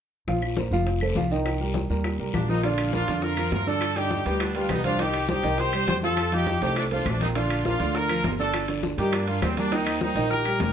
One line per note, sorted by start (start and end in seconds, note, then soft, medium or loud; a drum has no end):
0.28 0.69 A#1 medium
0.28 0.52 F3 medium
0.28 0.52 F4 medium
0.28 0.52 F5 medium
0.28 high bongo medium
0.28 high conga soft
0.28 long guiro medium
0.42 high bongo soft
0.42 high conga soft
0.42 claves medium
0.57 0.69 A#3 medium
0.57 0.70 A#4 medium
0.57 0.70 C5 medium
0.57 high bongo medium
0.57 high conga medium
0.57 short guiro medium
0.71 1.13 F1 medium
0.71 0.97 F3 medium
0.71 0.97 F4 medium
0.71 0.97 F5 medium
0.71 high bongo soft
0.71 high conga soft
0.71 short guiro medium
0.86 high bongo medium
0.86 high conga soft
0.86 long guiro medium
1.01 1.14 A3 medium
1.01 1.14 A4 medium
1.01 1.14 C5 medium
1.01 high conga soft
1.01 claves medium
1.15 1.84 C2 medium
1.15 1.29 F3 medium
1.15 1.29 F4 medium
1.15 1.29 F5 medium
1.15 high bongo soft
1.15 low bongo medium
1.15 high conga medium
1.15 short guiro medium
1.30 1.55 D#3 medium
1.30 1.56 D#4 medium
1.30 1.56 D#5 medium
1.30 high bongo soft
1.30 high conga soft
1.30 short guiro medium
1.45 high bongo medium
1.45 high conga soft
1.45 long guiro medium
1.45 claves medium
1.60 1.85 G3 medium
1.60 1.85 G4 medium
1.60 1.85 A#4 medium
1.60 high bongo soft
1.60 high conga soft
1.74 high bongo medium
1.74 high conga medium
1.74 short guiro medium
1.89 2.17 D#2 medium
1.89 2.14 G3 medium
1.89 2.14 G4 medium
1.89 2.14 A#4 medium
1.89 high bongo soft
1.89 high conga soft
1.89 short guiro medium
2.04 high bongo medium
2.04 high conga soft
2.04 long guiro medium
2.04 claves medium
2.19 2.33 C2 medium
2.19 2.43 G3 medium
2.19 2.44 G4 medium
2.19 2.44 A#4 medium
2.19 high conga soft
2.33 3.02 A#1 medium
2.33 2.48 A#3 medium
2.33 2.48 D4 medium
2.33 high bongo soft
2.33 low bongo medium
2.33 high conga medium
2.33 short guiro medium
2.33 claves medium
2.48 2.61 F3 medium
2.48 2.63 C4 medium
2.48 2.63 D#4 medium
2.48 2.61 F4 medium
2.48 2.61 A#4 medium
2.48 high bongo soft
2.48 short guiro medium
2.63 2.88 D3 medium
2.63 2.88 D4 medium
2.63 2.92 D4 medium
2.63 2.91 F4 medium
2.63 2.88 D5 medium
2.63 high bongo medium
2.63 high timbale medium
2.63 long guiro medium
2.78 high bongo soft
2.78 high conga soft
2.78 high timbale medium
2.78 claves medium
2.93 3.05 F3 medium
2.93 3.21 D4 medium
2.93 3.05 F4 medium
2.93 3.21 F4 medium
2.93 3.06 A#4 medium
2.93 high bongo medium
2.93 high conga medium
2.93 low timbale medium
2.93 short guiro medium
3.08 3.49 F2 medium
3.08 3.32 D3 medium
3.08 3.32 D4 medium
3.08 3.32 D5 medium
3.08 high bongo soft
3.08 high conga soft
3.08 high timbale medium
3.08 short guiro medium
3.22 3.52 F4 medium
3.22 3.51 A#4 medium
3.22 high bongo medium
3.22 high conga soft
3.22 long guiro medium
3.37 3.61 F3 medium
3.37 3.62 F4 medium
3.37 3.62 A#4 medium
3.37 high conga soft
3.37 high timbale medium
3.37 claves medium
3.52 4.20 G2 medium
3.52 3.66 F4 medium
3.52 3.66 A#4 medium
3.52 high bongo soft
3.52 low bongo medium
3.52 high conga medium
3.52 high timbale medium
3.52 low timbale medium
3.52 short guiro medium
3.66 3.91 D3 medium
3.66 3.91 D4 medium
3.66 3.97 D4 medium
3.66 3.96 A4 medium
3.66 3.91 D5 medium
3.66 high bongo soft
3.66 high conga soft
3.66 short guiro medium
3.81 high bongo medium
3.81 high conga soft
3.81 high timbale medium
3.81 long guiro medium
3.81 claves medium
3.96 4.20 D3 medium
3.96 4.20 D4 medium
3.96 4.25 D#4 medium
3.96 4.25 G4 loud
3.96 4.21 D5 medium
3.96 high bongo soft
3.96 high conga soft
3.96 high timbale medium
4.11 high bongo medium
4.11 high conga medium
4.11 low timbale medium
4.11 short guiro medium
4.25 4.67 D2 medium
4.25 4.50 G3 medium
4.25 4.40 D#4 medium
4.25 4.50 G4 medium
4.25 4.40 G4 medium
4.25 4.50 B4 medium
4.25 high bongo soft
4.25 high conga soft
4.25 high timbale medium
4.25 short guiro medium
4.40 4.56 B3 medium
4.40 4.55 D4 medium
4.40 high bongo medium
4.40 high conga soft
4.40 high timbale medium
4.40 long guiro medium
4.40 claves medium
4.55 4.79 G3 medium
4.55 4.69 D4 medium
4.55 4.69 F4 medium
4.55 4.80 G4 medium
4.55 4.80 B4 medium
4.55 high conga soft
4.55 high timbale medium
4.69 5.38 C2 medium
4.69 4.84 B3 medium
4.69 4.84 D#4 medium
4.69 high bongo soft
4.69 low bongo medium
4.69 high conga medium
4.69 high timbale medium
4.69 low timbale medium
4.69 short guiro medium
4.69 claves medium
4.84 4.97 G3 medium
4.84 4.99 D4 medium
4.84 4.99 F4 medium
4.84 4.97 G4 medium
4.84 4.97 C5 medium
4.84 high bongo soft
4.84 high conga medium
4.84 high timbale medium
4.84 short guiro medium
4.99 5.23 D#3 medium
4.99 5.23 D#4 medium
4.99 5.29 D#4 medium
4.99 5.29 G4 medium
4.99 5.24 D#5 medium
4.99 high bongo medium
4.99 high conga soft
4.99 high timbale medium
4.99 long guiro medium
5.14 high bongo soft
5.14 high conga soft
5.14 high timbale medium
5.14 claves medium
5.28 5.41 G3 medium
5.28 5.57 D#4 medium
5.28 5.41 G4 medium
5.28 5.57 G4 medium
5.28 5.41 C5 medium
5.28 high bongo medium
5.28 high conga medium
5.28 low timbale medium
5.28 short guiro medium
5.43 5.85 C2 medium
5.43 5.68 D#3 medium
5.43 5.68 D#4 medium
5.43 5.68 D#5 medium
5.43 high bongo soft
5.43 high conga soft
5.43 high timbale medium
5.43 short guiro medium
5.58 5.87 G4 medium
5.58 5.88 C5 medium
5.58 high bongo medium
5.58 high conga soft
5.58 long guiro medium
5.73 5.98 G3 medium
5.73 5.98 G4 medium
5.73 high conga soft
5.73 high timbale medium
5.73 claves medium
5.88 6.56 F2 medium
5.88 5.95 G4 medium
5.88 5.96 C5 medium
5.88 high bongo soft
5.88 low bongo medium
5.88 high conga medium
5.88 high timbale medium
5.88 low timbale medium
5.88 short guiro medium
6.02 6.27 F3 medium
6.02 6.27 F4 medium
6.02 6.31 F4 medium
6.02 6.31 A4 loud
6.02 6.28 F5 medium
6.02 high bongo soft
6.02 high conga soft
6.02 short guiro medium
6.17 high bongo medium
6.17 high conga soft
6.17 high timbale medium
6.17 long guiro medium
6.17 claves medium
6.32 6.56 F3 medium
6.32 6.61 D#4 medium
6.32 6.57 F4 medium
6.32 6.61 G4 medium
6.32 6.57 F5 medium
6.32 high bongo soft
6.32 high conga soft
6.32 high timbale medium
6.47 high bongo medium
6.47 high conga medium
6.47 low timbale medium
6.47 short guiro medium
6.61 7.03 C2 medium
6.61 6.86 A3 medium
6.61 6.76 D#4 medium
6.61 6.76 G4 medium
6.61 6.86 A4 medium
6.61 6.86 C5 medium
6.61 high bongo soft
6.61 high conga soft
6.61 high timbale medium
6.61 short guiro medium
6.76 6.85 A3 medium
6.76 6.84 D4 medium
6.76 high bongo medium
6.76 high conga soft
6.76 high timbale medium
6.76 long guiro medium
6.76 claves medium
6.91 7.16 A3 medium
6.91 7.06 D4 medium
6.91 7.06 F4 medium
6.91 7.16 A4 medium
6.91 7.16 C5 medium
6.91 high conga soft
6.91 high timbale medium
7.06 7.74 A#1 loud
7.06 7.22 A3 medium
7.06 7.21 D4 medium
7.06 high bongo soft
7.06 low bongo medium
7.06 high conga medium
7.06 high timbale medium
7.06 low timbale medium
7.06 short guiro medium
7.06 claves medium
7.21 7.33 F3 medium
7.21 7.28 C4 medium
7.21 7.28 D#4 medium
7.21 7.33 F4 medium
7.21 7.34 A#4 medium
7.21 high bongo soft
7.21 high conga medium
7.21 high timbale medium
7.21 short guiro medium
7.35 7.60 D3 medium
7.35 7.60 D4 medium
7.35 7.64 D4 medium
7.35 7.63 F4 medium
7.35 7.60 D5 medium
7.35 high bongo medium
7.35 high conga soft
7.35 high timbale medium
7.35 long guiro medium
7.50 high bongo soft
7.50 high conga soft
7.50 high timbale medium
7.50 claves medium
7.65 7.78 F3 medium
7.65 7.93 D4 medium
7.65 7.78 F4 medium
7.65 7.93 F4 medium
7.65 7.78 A#4 medium
7.65 high bongo medium
7.65 high conga medium
7.65 low timbale medium
7.65 short guiro medium
7.80 8.21 D2 medium
7.80 8.04 D3 medium
7.80 8.04 D4 medium
7.80 8.05 D5 medium
7.80 high bongo soft
7.80 high conga soft
7.80 high timbale medium
7.80 short guiro medium
7.95 8.25 F4 medium
7.95 8.24 A#4 loud
7.95 high bongo medium
7.95 high conga soft
7.95 long guiro medium
8.09 8.34 F3 medium
8.09 8.34 F4 medium
8.09 8.34 A#4 medium
8.09 high conga soft
8.09 high timbale medium
8.09 claves medium
8.24 8.93 G1 medium
8.24 8.32 F4 medium
8.24 8.32 A#4 medium
8.24 high bongo soft
8.24 low bongo medium
8.24 high conga medium
8.24 high timbale medium
8.24 low timbale medium
8.24 short guiro medium
8.39 8.63 D3 medium
8.39 8.64 D4 medium
8.39 8.67 D4 medium
8.39 8.67 A4 medium
8.39 8.64 D5 medium
8.39 high bongo soft
8.39 high conga soft
8.39 short guiro medium
8.53 high bongo medium
8.53 high conga soft
8.53 high timbale medium
8.53 long guiro medium
8.53 claves medium
8.68 8.93 D3 medium
8.68 8.93 D4 medium
8.68 8.93 D5 medium
8.68 high bongo soft
8.68 high conga soft
8.68 high timbale medium
8.83 high bongo medium
8.83 high conga medium
8.83 low timbale medium
8.83 short guiro medium
8.98 9.39 G2 medium
8.98 9.23 G3 medium
8.98 9.12 D#4 medium
8.98 9.23 G4 medium
8.98 9.12 G4 medium
8.98 9.23 A#4 medium
8.98 high bongo soft
8.98 high conga soft
8.98 high timbale medium
8.98 short guiro medium
9.12 9.28 A#3 medium
9.12 9.28 D4 medium
9.12 high bongo medium
9.12 high conga soft
9.12 high timbale loud
9.12 long guiro medium
9.12 claves medium
9.27 9.52 G3 medium
9.27 9.42 D4 medium
9.27 9.42 F4 medium
9.27 9.52 G4 medium
9.27 9.52 A#4 medium
9.27 high conga soft
9.27 high timbale medium
9.42 10.11 D#2 medium
9.42 9.57 G3 medium
9.42 9.57 C4 medium
9.42 high bongo soft
9.42 low bongo medium
9.42 high conga medium
9.42 high timbale medium
9.42 low timbale medium
9.42 short guiro medium
9.42 claves medium
9.57 9.69 G3 medium
9.57 9.73 A#3 medium
9.57 9.73 D4 medium
9.57 9.69 G4 medium
9.57 9.70 A#4 medium
9.57 high bongo soft
9.57 high conga medium
9.57 high timbale medium
9.57 short guiro medium
9.72 9.96 D#3 medium
9.72 10.01 C4 medium
9.72 9.96 D#4 medium
9.72 10.01 D#4 medium
9.72 9.96 D#5 medium
9.72 high bongo medium
9.72 high conga soft
9.72 high timbale medium
9.72 long guiro medium
9.86 high bongo soft
9.86 high conga soft
9.86 high timbale medium
9.86 claves medium
10.01 10.14 G3 medium
10.01 10.29 C4 medium
10.01 10.29 D#4 medium
10.01 10.14 G4 medium
10.01 10.14 A#4 medium
10.01 high bongo medium
10.01 high conga medium
10.01 low timbale medium
10.01 short guiro medium
10.15 10.57 A#1 medium
10.15 10.40 D#3 medium
10.15 10.40 D#4 medium
10.15 10.41 D#5 medium
10.15 high bongo soft
10.15 high conga soft
10.15 high timbale medium
10.15 short guiro medium
10.31 10.59 G4 medium
10.31 10.58 A#4 loud
10.31 high bongo medium
10.31 high conga soft
10.31 long guiro medium
10.45 10.70 G3 medium
10.45 10.70 G4 medium
10.45 10.70 A#4 medium
10.45 high conga soft
10.45 high timbale medium
10.45 claves medium
10.60 10.73 F1 loud
10.60 10.73 G4 medium
10.60 10.73 A#4 medium
10.60 high bongo soft
10.60 low bongo medium
10.60 high conga medium
10.60 high timbale medium
10.60 low timbale medium
10.60 short guiro medium